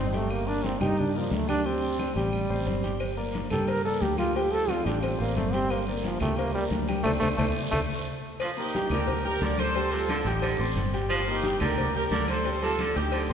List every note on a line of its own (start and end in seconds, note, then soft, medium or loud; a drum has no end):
0.00 0.76 G1 loud
0.00 0.10 C4 medium
0.00 0.16 C4 medium
0.00 0.10 C5 medium
0.00 0.10 D5 medium
0.13 0.40 G3 medium
0.13 0.33 A3 medium
0.13 0.41 G4 medium
0.13 0.41 G5 medium
0.13 high conga medium
0.13 short guiro medium
0.30 0.49 A#3 medium
0.30 high conga soft
0.30 long guiro medium
0.30 claves medium
0.47 0.75 A#3 medium
0.47 0.67 D4 loud
0.47 0.75 A#4 medium
0.47 0.75 D5 medium
0.47 high conga soft
0.64 0.84 C4 medium
0.64 high conga loud
0.64 short guiro medium
0.81 1.28 G2 medium
0.81 1.09 G3 medium
0.81 1.01 D#4 loud
0.81 1.09 G4 medium
0.81 1.09 G5 medium
0.81 high conga soft
0.81 low conga medium
0.81 short guiro medium
0.81 claves medium
0.98 1.16 D4 medium
0.98 high conga soft
0.98 low conga medium
0.98 long guiro medium
1.15 1.35 F3 medium
1.15 1.43 A#3 medium
1.15 1.43 A#4 medium
1.15 1.43 D5 medium
1.15 high conga soft
1.31 2.10 D2 loud
1.31 1.49 A3 medium
1.31 high conga medium
1.31 short guiro medium
1.48 1.62 G3 medium
1.48 1.68 D4 loud
1.48 1.62 G4 medium
1.48 1.62 G5 medium
1.48 high conga medium
1.48 short guiro medium
1.48 claves medium
1.64 1.93 G3 medium
1.64 2.16 C4 medium
1.64 1.93 G4 medium
1.64 1.93 G5 medium
1.64 high conga soft
1.64 long guiro medium
1.83 high conga soft
1.99 2.13 C4 medium
1.99 2.13 C5 medium
1.99 2.13 D5 medium
1.99 high conga loud
1.99 short guiro medium
1.99 claves medium
2.16 2.47 A1 medium
2.16 2.97 G3 loud
2.16 2.44 G3 medium
2.16 2.44 G4 medium
2.16 2.44 G5 medium
2.16 high conga soft
2.16 short guiro medium
2.32 high conga soft
2.32 long guiro medium
2.32 claves medium
2.50 2.66 A1 medium
2.50 2.64 C4 medium
2.50 2.64 C5 medium
2.50 2.64 D5 medium
2.50 high conga soft
2.66 3.45 G1 loud
2.66 2.81 C4 medium
2.66 2.81 C5 medium
2.66 2.81 D5 medium
2.66 high conga medium
2.66 short guiro medium
2.83 3.11 G3 medium
2.83 3.11 G4 medium
2.83 3.11 G5 medium
2.83 high conga medium
2.83 short guiro medium
3.00 cowbell loud
3.00 high conga soft
3.00 long guiro medium
3.00 claves medium
3.17 3.45 A#3 medium
3.17 3.45 A#4 medium
3.17 3.45 D5 medium
3.17 high conga soft
3.33 cowbell medium
3.33 high conga loud
3.33 short guiro medium
3.50 3.98 G2 medium
3.50 3.79 G3 medium
3.50 3.79 G4 medium
3.50 3.71 A4 loud
3.50 3.80 G5 medium
3.50 high conga soft
3.50 low conga medium
3.50 short guiro medium
3.50 claves medium
3.68 3.85 A#4 loud
3.68 cowbell loud
3.68 high conga soft
3.68 long guiro medium
3.85 4.13 A#3 medium
3.85 4.03 A4 loud
3.85 4.13 A#4 medium
3.85 4.13 D5 medium
3.85 high conga soft
4.01 4.80 D2 medium
4.01 4.18 G4 medium
4.01 cowbell medium
4.01 high conga medium
4.01 short guiro medium
4.17 4.33 G3 medium
4.17 4.38 F4 loud
4.17 4.33 G4 medium
4.17 4.33 G5 medium
4.17 cowbell medium
4.17 high conga medium
4.17 short guiro medium
4.17 claves medium
4.33 4.64 G3 medium
4.33 4.64 G4 medium
4.33 4.54 G4 loud
4.33 4.64 G5 medium
4.33 cowbell loud
4.33 high conga soft
4.33 long guiro medium
4.52 4.72 A4 loud
4.52 cowbell medium
4.52 high conga soft
4.68 4.83 C4 medium
4.68 4.88 F4 loud
4.68 4.83 C5 medium
4.68 4.83 D5 medium
4.68 cowbell medium
4.68 high conga loud
4.68 short guiro medium
4.68 claves medium
4.85 5.17 A1 loud
4.85 5.13 G3 medium
4.85 5.05 D4 medium
4.85 5.13 G4 medium
4.85 5.14 G5 medium
4.85 cowbell medium
4.85 high conga soft
4.85 short guiro medium
5.02 5.20 C4 medium
5.02 cowbell loud
5.02 high conga soft
5.02 long guiro medium
5.02 claves medium
5.19 5.36 A1 medium
5.19 5.39 A#3 medium
5.19 5.33 C4 medium
5.19 5.33 C5 medium
5.19 5.34 D5 medium
5.19 high conga soft
5.36 6.15 G1 medium
5.36 5.55 A3 medium
5.36 5.51 C4 medium
5.36 5.51 C5 medium
5.36 5.51 D5 medium
5.36 cowbell medium
5.36 high conga medium
5.36 short guiro medium
5.53 5.82 G3 medium
5.53 5.73 C4 loud
5.53 5.82 G4 medium
5.53 5.82 G5 medium
5.53 cowbell medium
5.53 high conga medium
5.53 short guiro medium
5.69 5.88 A#3 medium
5.69 cowbell loud
5.69 high conga soft
5.69 long guiro medium
5.69 claves medium
5.87 6.04 D3 medium
5.87 6.15 A#3 medium
5.87 6.16 A#4 medium
5.87 6.15 D5 medium
5.87 high conga soft
6.03 6.21 F3 medium
6.03 cowbell medium
6.03 high conga loud
6.03 short guiro medium
6.20 6.68 D2 loud
6.20 6.49 G3 medium
6.20 6.38 A3 loud
6.20 6.49 G4 medium
6.20 6.49 G5 medium
6.20 high conga soft
6.20 low conga medium
6.20 short guiro medium
6.20 claves medium
6.36 6.54 A#3 loud
6.36 cowbell loud
6.36 high conga soft
6.36 long guiro medium
6.54 6.65 G3 loud
6.54 6.82 A#3 medium
6.54 6.82 A#4 medium
6.54 6.83 D5 medium
6.54 high conga soft
6.71 7.03 D2 loud
6.71 cowbell medium
6.71 high conga medium
6.71 short guiro medium
6.88 7.02 G3 medium
6.88 7.03 G4 medium
6.88 7.03 G5 medium
6.88 cowbell medium
6.88 high conga medium
6.88 short guiro medium
6.88 claves medium
7.03 7.18 D2 loud
7.03 7.12 A3 loud
7.03 7.16 A4 loud
7.03 7.16 C5 loud
7.03 7.16 D5 loud
7.03 cowbell loud
7.03 low conga medium
7.03 long guiro loud
7.03 claves loud
7.20 7.34 D2 loud
7.20 7.29 A3 loud
7.20 7.33 A4 loud
7.20 7.33 C5 loud
7.20 7.33 D5 medium
7.20 cowbell loud
7.20 low conga medium
7.20 long guiro loud
7.20 claves loud
7.37 7.51 D2 medium
7.37 7.46 A3 medium
7.37 7.50 A4 loud
7.37 7.50 C5 medium
7.37 7.50 D5 loud
7.37 cowbell loud
7.37 low conga loud
7.37 long guiro loud
7.37 claves loud
7.71 7.85 D2 loud
7.71 7.80 A3 loud
7.71 7.84 A4 loud
7.71 7.84 C5 loud
7.71 7.84 D5 medium
7.71 cowbell loud
7.71 low conga loud
7.71 long guiro loud
7.71 claves loud
8.40 8.68 F3 medium
8.40 8.49 D4 medium
8.40 8.50 F4 medium
8.40 cowbell loud
8.40 high conga soft
8.40 long guiro medium
8.40 claves medium
8.57 8.71 A#3 medium
8.57 8.89 D#4 medium
8.57 8.90 G4 loud
8.57 8.71 A#4 medium
8.57 8.72 A#5 medium
8.57 high conga soft
8.73 8.88 G3 medium
8.73 8.88 G4 medium
8.73 8.89 G5 medium
8.73 cowbell medium
8.73 high conga loud
8.73 short guiro medium
8.90 9.38 D2 medium
8.90 9.20 D3 medium
8.90 9.19 D4 medium
8.90 9.23 G4 medium
8.90 9.23 A#4 medium
8.90 9.19 D5 medium
8.90 9.19 D6 medium
8.90 high conga soft
8.90 low conga medium
8.90 short guiro medium
8.90 claves medium
9.07 cowbell loud
9.07 high conga soft
9.07 low conga medium
9.07 long guiro medium
9.24 9.38 G4 medium
9.24 9.41 G4 medium
9.24 9.41 A#4 loud
9.24 9.39 G5 medium
9.24 9.39 G6 medium
9.24 high conga soft
9.41 10.20 D2 loud
9.41 9.70 D3 medium
9.41 9.69 D4 medium
9.41 9.59 A#4 medium
9.41 9.69 D5 medium
9.41 9.59 D5 loud
9.41 9.70 D6 medium
9.41 cowbell medium
9.41 high conga medium
9.41 short guiro medium
9.58 9.90 A4 medium
9.58 9.90 C5 loud
9.58 cowbell medium
9.58 high conga medium
9.58 short guiro medium
9.58 claves medium
9.75 10.03 G3 medium
9.75 10.04 G4 medium
9.75 10.04 G5 medium
9.75 cowbell loud
9.75 high conga soft
9.75 long guiro medium
9.92 10.01 C3 medium
9.92 10.26 F4 medium
9.92 10.26 A4 loud
9.92 cowbell medium
9.92 high conga soft
10.08 10.27 D3 medium
10.08 10.23 D4 medium
10.08 10.23 D5 medium
10.08 10.23 D6 medium
10.08 cowbell medium
10.08 high conga loud
10.08 short guiro medium
10.08 claves medium
10.25 10.57 A1 medium
10.25 10.61 D#4 medium
10.25 10.60 G4 medium
10.25 10.54 G4 medium
10.25 10.54 G5 medium
10.25 10.54 G6 medium
10.25 cowbell medium
10.25 high conga soft
10.25 short guiro medium
10.42 10.82 D3 medium
10.42 cowbell loud
10.42 high conga soft
10.42 long guiro medium
10.42 claves medium
10.59 10.75 A1 medium
10.59 10.87 C4 medium
10.59 10.88 C5 medium
10.59 10.88 C6 medium
10.59 high conga soft
10.76 11.55 G1 loud
10.76 cowbell medium
10.76 high conga medium
10.76 short guiro medium
10.93 11.21 G3 medium
10.93 11.22 G4 medium
10.93 11.22 G5 medium
10.93 cowbell medium
10.93 short guiro medium
11.09 11.37 F3 loud
11.09 11.19 D4 medium
11.09 11.20 F4 medium
11.09 cowbell loud
11.09 high conga soft
11.09 long guiro medium
11.09 claves medium
11.27 11.41 A#3 medium
11.27 11.59 D#4 medium
11.27 11.59 G4 loud
11.27 11.41 A#4 medium
11.27 11.42 A#5 medium
11.27 high conga soft
11.43 11.58 G3 medium
11.43 11.58 G4 medium
11.43 11.59 G5 medium
11.43 cowbell medium
11.43 high conga loud
11.43 short guiro medium
11.60 12.08 D2 loud
11.60 11.88 D3 medium
11.60 11.89 D4 medium
11.60 11.95 G4 medium
11.60 11.95 A#4 loud
11.60 11.89 D5 medium
11.60 11.89 D6 medium
11.60 high conga soft
11.60 low conga medium
11.60 short guiro medium
11.60 claves medium
11.78 cowbell loud
11.78 high conga soft
11.78 low conga medium
11.78 long guiro medium
11.95 12.09 G4 medium
11.95 12.04 G4 medium
11.95 12.03 A#4 loud
11.95 12.09 G5 medium
11.95 12.09 G6 medium
11.95 high conga soft
12.11 12.90 D2 loud
12.11 12.39 D3 medium
12.11 12.39 D4 medium
12.11 12.28 A#4 medium
12.11 12.39 D5 medium
12.11 12.28 D5 loud
12.11 12.40 D6 medium
12.11 cowbell medium
12.11 high conga loud
12.11 short guiro medium
12.28 12.60 A4 medium
12.28 12.60 C5 loud
12.28 cowbell medium
12.28 high conga medium
12.28 short guiro medium
12.28 claves medium
12.45 12.73 G3 medium
12.45 12.73 G4 medium
12.45 12.74 G5 medium
12.45 cowbell loud
12.45 high conga soft
12.45 long guiro medium
12.62 12.71 C3 medium
12.62 12.94 F4 medium
12.62 12.94 A4 loud
12.62 cowbell medium
12.62 high conga soft
12.79 12.97 D3 medium
12.79 12.93 D4 medium
12.79 12.94 D5 medium
12.79 12.94 D6 medium
12.79 cowbell medium
12.79 high conga loud
12.79 short guiro medium
12.79 claves medium
12.95 13.27 D2 medium
12.95 13.28 D#4 medium
12.95 13.24 G4 medium
12.95 13.27 G4 medium
12.95 13.24 G5 medium
12.95 13.24 G6 medium
12.95 cowbell medium
12.95 high conga soft
12.95 short guiro medium
13.12 13.33 D3 medium
13.12 cowbell loud
13.12 high conga soft
13.12 long guiro medium
13.12 claves medium
13.30 13.33 A1 medium
13.30 13.33 C4 medium
13.30 13.33 C5 medium